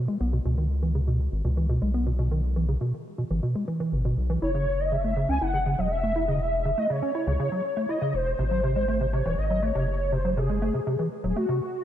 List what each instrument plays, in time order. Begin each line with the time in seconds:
0.08 acid bass G#3
0.21 analog synth bass B1, acid bass B3
0.33 acid bass B2
0.45 analog synth bass C#2, acid bass B2
0.58 acid bass D#3
0.83 acid bass E3
0.95 acid bass C#3
1.07 acid bass B2
1.32 analog synth bass G#1
1.45 analog synth bass C#2, acid bass B2
1.57 acid bass E3
1.69 acid bass B2
1.82 analog synth bass B1, acid bass G#3
1.94 acid bass B3
2.07 acid bass B2
2.19 acid bass B2
2.31 acid bass D#3
2.56 acid bass E3
2.69 acid bass C#3
2.81 acid bass B2
3.18 acid bass B2
3.30 analog synth bass G#1, acid bass E3
3.43 acid bass B2
3.55 acid bass G#3
3.68 acid bass E3
3.80 acid bass E3
3.92 analog synth bass G#1, acid bass B2
4.05 acid bass B2
4.17 analog synth bass B1
4.30 acid bass E3
4.42 analog synth bass F#1, acid bass E4, soft synth lead C#5
4.55 acid bass C#3
4.79 soft synth lead D#5
4.92 acid bass C#3, soft synth lead E5
5.04 acid bass A3
5.17 acid bass C#3
5.29 analog synth bass C#2, acid bass C#4, soft synth lead G#5
5.41 analog synth bass F#1, acid bass E4, soft synth lead F#5
5.54 acid bass C#3
5.66 acid bass C#3
5.78 analog synth bass E1, acid bass F#3, soft synth lead D#5
5.91 soft synth lead E5
6.03 acid bass A3
6.16 acid bass E4
6.28 acid bass C#3, soft synth lead D#5
6.41 soft synth lead E5
6.65 acid bass C#3
6.78 acid bass A3, soft synth lead D#5
6.90 acid bass C#3, soft synth lead C#5
7.02 acid bass C#4
7.15 acid bass E4
7.27 analog synth bass C#2, acid bass C#3
7.40 acid bass C#3
7.52 acid bass F#3
7.77 acid bass A3
7.89 acid bass E4, soft synth lead D#5
8.02 acid bass C#3
8.14 analog synth bass E1, soft synth lead C5
8.39 analog synth bass G#1, acid bass C3
8.51 acid bass F#3
8.63 acid bass C3
8.76 acid bass G#3
8.88 acid bass A3
9.01 acid bass C3
9.13 acid bass C3, soft synth lead C#5
9.26 analog synth bass D#1, acid bass E3
9.38 analog synth bass G#1, soft synth lead D#5
9.50 acid bass F#3
9.63 acid bass A3, soft synth lead C#5
9.75 analog synth bass F#1, acid bass C3
10.12 acid bass C3, soft synth lead C5
10.25 acid bass F#3
10.37 acid bass C3, soft synth lead G#4
10.49 acid bass G#3
10.62 acid bass A3
10.74 acid bass C3
10.87 acid bass C3
10.99 acid bass E3
11.24 analog synth bass D#1, acid bass F#3
11.29 soft synth lead G#4
11.36 acid bass A3, soft synth lead F#4
11.49 acid bass C3